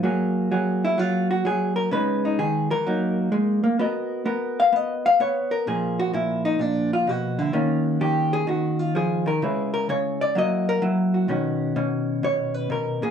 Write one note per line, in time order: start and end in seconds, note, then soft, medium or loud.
0.04 0.50 F#3 medium
0.04 1.92 A#3 soft
0.04 0.52 G#4 soft
0.52 0.97 F#3 medium
0.52 1.45 G#4 soft
0.85 0.99 E4 medium
0.98 1.44 F#3 medium
0.98 1.30 F4 medium
1.31 1.45 F#4 medium
1.45 1.90 F#3 medium
1.45 1.76 G#4 medium
1.76 1.91 A#4 medium
1.91 2.38 C#3 medium
1.91 2.84 G#3 soft
1.91 2.84 B3 soft
1.91 2.25 D#4 soft
1.91 2.24 B4 medium
2.25 2.39 D#4 medium
2.39 2.71 D#3 medium
2.39 2.70 G#4 medium
2.71 2.86 E3 medium
2.71 3.79 A#4 medium
2.87 3.31 F#3 medium
2.87 3.64 A#3 soft
2.87 3.78 D#4 soft
3.32 3.63 G#3 medium
3.64 3.78 A#3 medium
3.79 4.24 B3 medium
3.79 5.68 F#4 soft
3.79 4.26 A#4 soft
3.79 4.59 D#5 soft
4.26 4.71 B3 medium
4.26 5.51 A#4 soft
4.60 4.76 F5 medium
4.73 5.19 B3 medium
4.73 5.05 D#5 medium
5.06 5.20 F5 loud
5.20 5.65 B3 medium
5.20 5.52 C#5 medium
5.51 5.66 A#4 medium
5.67 6.12 A#2 medium
5.67 7.53 F3 soft
5.67 7.53 A#3 soft
5.67 5.99 G#4 medium
5.99 6.14 F#4 medium
6.13 6.58 A#2 medium
6.13 6.45 E4 medium
6.45 6.61 D#4 medium
6.59 7.06 A#2 medium
6.59 6.92 D4 medium
6.93 7.09 F4 medium
7.07 7.39 B2 medium
7.07 7.39 F#4 medium
7.39 7.53 D3 medium
7.39 7.55 E4 medium
7.53 8.00 D#3 medium
7.53 8.94 A#3 soft
7.53 9.43 C#4 soft
7.53 7.85 F4 medium
7.85 8.00 F#4 medium
8.01 8.46 D#3 medium
8.01 8.33 G4 medium
8.33 8.48 G#4 loud
8.47 9.25 D#3 medium
8.47 8.79 F#4 medium
8.79 8.94 F4 medium
8.95 9.27 F3 medium
8.95 9.27 G#4 medium
9.26 9.41 D#3 medium
9.26 9.45 A#4 medium
9.42 9.88 C#3 medium
9.42 10.34 G#3 soft
9.42 10.34 E4 soft
9.42 10.34 G#4 soft
9.42 9.73 B4 medium
9.74 9.88 A#4 medium
9.89 10.34 C#3 medium
9.89 10.21 C#5 medium
10.21 10.35 D5 loud
10.35 10.81 F#3 medium
10.35 11.27 A#3 soft
10.35 10.81 E4 soft
10.35 10.68 F#4 soft
10.35 10.69 D#5 medium
10.69 10.83 A#4 loud
10.82 11.28 F#3 medium
10.82 11.27 E4 soft
11.14 11.30 F#4 soft
11.28 11.75 B2 medium
11.28 13.11 D#3 soft
11.28 11.75 C#4 medium
11.28 13.02 F#4 soft
11.76 12.22 B2 medium
11.76 13.11 C#4 soft
12.23 12.69 B2 medium
12.23 12.54 C#5 medium
12.54 12.69 B4 loud
12.70 13.02 B2 medium
12.70 13.03 A#4 medium
13.02 13.11 A#2 medium
13.02 13.11 G#4 medium